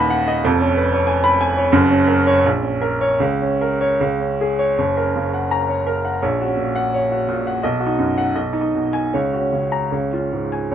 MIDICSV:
0, 0, Header, 1, 2, 480
1, 0, Start_track
1, 0, Key_signature, 6, "major"
1, 0, Tempo, 655738
1, 310, Time_signature, 2, 2, 24, 8
1, 1273, Tempo, 704225
1, 1753, Tempo, 767263
1, 3673, Tempo, 708383
1, 5593, Tempo, 783290
1, 7064, End_track
2, 0, Start_track
2, 0, Title_t, "Upright piano"
2, 0, Program_c, 0, 0
2, 0, Control_c, 0, 64, 127
2, 0, Note_on_c, 0, 27, 90
2, 0, Note_on_c, 0, 39, 94
2, 0, Note_on_c, 0, 63, 73
2, 0, Note_on_c, 0, 71, 72
2, 0, Note_on_c, 0, 75, 67
2, 0, Note_on_c, 0, 78, 73
2, 0, Note_on_c, 0, 83, 99
2, 75, Note_off_c, 0, 78, 0
2, 75, Note_on_c, 0, 78, 85
2, 145, Note_off_c, 0, 83, 0
2, 202, Note_off_c, 0, 75, 0
2, 202, Note_on_c, 0, 75, 70
2, 264, Note_off_c, 0, 78, 0
2, 273, Note_off_c, 0, 27, 0
2, 280, Note_off_c, 0, 39, 0
2, 316, Note_off_c, 0, 75, 0
2, 322, Control_c, 0, 64, 0
2, 322, Note_on_c, 0, 29, 91
2, 324, Note_off_c, 0, 71, 0
2, 326, Note_on_c, 0, 41, 100
2, 327, Note_off_c, 0, 63, 0
2, 421, Control_c, 0, 64, 127
2, 441, Note_on_c, 0, 61, 73
2, 562, Note_on_c, 0, 71, 66
2, 626, Note_off_c, 0, 61, 0
2, 679, Note_on_c, 0, 73, 71
2, 746, Note_off_c, 0, 71, 0
2, 783, Note_on_c, 0, 80, 80
2, 865, Note_off_c, 0, 73, 0
2, 906, Note_on_c, 0, 83, 100
2, 978, Note_off_c, 0, 80, 0
2, 1031, Note_on_c, 0, 80, 82
2, 1100, Note_off_c, 0, 83, 0
2, 1151, Note_on_c, 0, 73, 73
2, 1225, Note_off_c, 0, 80, 0
2, 1250, Note_off_c, 0, 29, 0
2, 1252, Note_off_c, 0, 41, 0
2, 1259, Note_on_c, 0, 30, 90
2, 1263, Note_on_c, 0, 42, 96
2, 1273, Note_off_c, 0, 73, 0
2, 1286, Control_c, 0, 64, 0
2, 1382, Control_c, 0, 64, 127
2, 1389, Note_on_c, 0, 61, 70
2, 1501, Note_on_c, 0, 70, 69
2, 1581, Note_off_c, 0, 61, 0
2, 1634, Note_on_c, 0, 73, 92
2, 1700, Note_off_c, 0, 70, 0
2, 1732, Note_off_c, 0, 30, 0
2, 1734, Note_off_c, 0, 42, 0
2, 1750, Note_on_c, 0, 34, 70
2, 1755, Note_off_c, 0, 73, 0
2, 1763, Control_c, 0, 64, 0
2, 1850, Control_c, 0, 64, 127
2, 1865, Note_on_c, 0, 61, 56
2, 1986, Note_on_c, 0, 70, 70
2, 2054, Note_off_c, 0, 61, 0
2, 2108, Note_on_c, 0, 73, 84
2, 2178, Note_off_c, 0, 70, 0
2, 2211, Note_off_c, 0, 34, 0
2, 2225, Note_on_c, 0, 37, 77
2, 2229, Note_off_c, 0, 73, 0
2, 2239, Control_c, 0, 64, 0
2, 2334, Control_c, 0, 64, 127
2, 2361, Note_on_c, 0, 61, 63
2, 2484, Note_on_c, 0, 70, 62
2, 2555, Note_off_c, 0, 61, 0
2, 2607, Note_on_c, 0, 73, 82
2, 2678, Note_off_c, 0, 70, 0
2, 2707, Note_off_c, 0, 37, 0
2, 2726, Note_off_c, 0, 73, 0
2, 2730, Note_on_c, 0, 37, 73
2, 2733, Control_c, 0, 64, 0
2, 2849, Control_c, 0, 64, 127
2, 2854, Note_on_c, 0, 61, 52
2, 2984, Note_on_c, 0, 68, 69
2, 3045, Note_off_c, 0, 61, 0
2, 3095, Note_on_c, 0, 73, 80
2, 3169, Note_off_c, 0, 68, 0
2, 3197, Note_off_c, 0, 37, 0
2, 3207, Note_off_c, 0, 73, 0
2, 3215, Note_on_c, 0, 30, 75
2, 3216, Note_on_c, 0, 73, 63
2, 3218, Control_c, 0, 64, 0
2, 3314, Control_c, 0, 64, 127
2, 3333, Note_on_c, 0, 70, 56
2, 3376, Note_on_c, 0, 61, 57
2, 3401, Note_off_c, 0, 73, 0
2, 3453, Note_on_c, 0, 49, 55
2, 3517, Note_off_c, 0, 70, 0
2, 3564, Note_on_c, 0, 78, 55
2, 3619, Note_off_c, 0, 61, 0
2, 3633, Note_off_c, 0, 49, 0
2, 3674, Note_on_c, 0, 82, 75
2, 3751, Note_off_c, 0, 78, 0
2, 3793, Note_on_c, 0, 73, 52
2, 3869, Note_off_c, 0, 82, 0
2, 3912, Note_on_c, 0, 70, 61
2, 3986, Note_off_c, 0, 73, 0
2, 4036, Note_on_c, 0, 78, 57
2, 4102, Note_off_c, 0, 70, 0
2, 4128, Note_off_c, 0, 30, 0
2, 4152, Note_off_c, 0, 78, 0
2, 4153, Note_on_c, 0, 73, 64
2, 4156, Note_on_c, 0, 34, 67
2, 4163, Control_c, 0, 64, 0
2, 4275, Control_c, 0, 64, 127
2, 4282, Note_on_c, 0, 66, 56
2, 4317, Note_on_c, 0, 61, 57
2, 4340, Note_off_c, 0, 73, 0
2, 4388, Note_on_c, 0, 46, 52
2, 4465, Note_off_c, 0, 66, 0
2, 4515, Note_on_c, 0, 78, 74
2, 4566, Note_off_c, 0, 61, 0
2, 4579, Note_off_c, 0, 46, 0
2, 4641, Note_on_c, 0, 73, 63
2, 4704, Note_off_c, 0, 78, 0
2, 4761, Note_on_c, 0, 66, 60
2, 4826, Note_off_c, 0, 73, 0
2, 4874, Note_on_c, 0, 46, 65
2, 4945, Note_off_c, 0, 66, 0
2, 5000, Note_on_c, 0, 78, 58
2, 5061, Note_off_c, 0, 46, 0
2, 5080, Note_off_c, 0, 34, 0
2, 5110, Note_on_c, 0, 75, 71
2, 5112, Note_off_c, 0, 78, 0
2, 5112, Note_on_c, 0, 35, 73
2, 5116, Control_c, 0, 64, 0
2, 5226, Note_on_c, 0, 66, 60
2, 5244, Control_c, 0, 64, 127
2, 5267, Note_on_c, 0, 63, 58
2, 5301, Note_off_c, 0, 75, 0
2, 5348, Note_on_c, 0, 42, 58
2, 5420, Note_off_c, 0, 66, 0
2, 5478, Note_on_c, 0, 78, 67
2, 5528, Note_off_c, 0, 63, 0
2, 5544, Note_off_c, 0, 42, 0
2, 5583, Note_off_c, 0, 35, 0
2, 5598, Note_off_c, 0, 78, 0
2, 5599, Note_on_c, 0, 35, 58
2, 5599, Note_on_c, 0, 75, 55
2, 5605, Control_c, 0, 64, 0
2, 5688, Control_c, 0, 64, 127
2, 5707, Note_on_c, 0, 63, 58
2, 5747, Note_off_c, 0, 63, 0
2, 5756, Note_on_c, 0, 63, 53
2, 5780, Note_off_c, 0, 75, 0
2, 5839, Note_on_c, 0, 47, 50
2, 5952, Note_on_c, 0, 80, 67
2, 6004, Note_off_c, 0, 63, 0
2, 6023, Note_off_c, 0, 47, 0
2, 6053, Note_off_c, 0, 35, 0
2, 6069, Note_off_c, 0, 80, 0
2, 6078, Control_c, 0, 64, 0
2, 6078, Note_on_c, 0, 73, 59
2, 6079, Note_on_c, 0, 37, 58
2, 6175, Control_c, 0, 64, 127
2, 6200, Note_on_c, 0, 66, 49
2, 6236, Note_on_c, 0, 61, 45
2, 6269, Note_off_c, 0, 73, 0
2, 6316, Note_on_c, 0, 49, 42
2, 6393, Note_off_c, 0, 66, 0
2, 6435, Note_on_c, 0, 82, 59
2, 6496, Note_off_c, 0, 61, 0
2, 6510, Note_off_c, 0, 49, 0
2, 6548, Note_off_c, 0, 37, 0
2, 6556, Note_off_c, 0, 82, 0
2, 6557, Note_on_c, 0, 37, 53
2, 6559, Note_on_c, 0, 73, 45
2, 6567, Control_c, 0, 64, 0
2, 6656, Control_c, 0, 64, 127
2, 6687, Note_on_c, 0, 65, 45
2, 6720, Note_on_c, 0, 61, 39
2, 6751, Note_off_c, 0, 73, 0
2, 6808, Note_on_c, 0, 44, 44
2, 6874, Note_off_c, 0, 65, 0
2, 6927, Note_on_c, 0, 80, 52
2, 6973, Note_off_c, 0, 61, 0
2, 6992, Note_off_c, 0, 44, 0
2, 7020, Note_off_c, 0, 37, 0
2, 7039, Note_off_c, 0, 80, 0
2, 7043, Note_on_c, 0, 30, 60
2, 7043, Note_on_c, 0, 73, 52
2, 7047, Control_c, 0, 64, 0
2, 7064, Note_off_c, 0, 30, 0
2, 7064, Note_off_c, 0, 73, 0
2, 7064, End_track
0, 0, End_of_file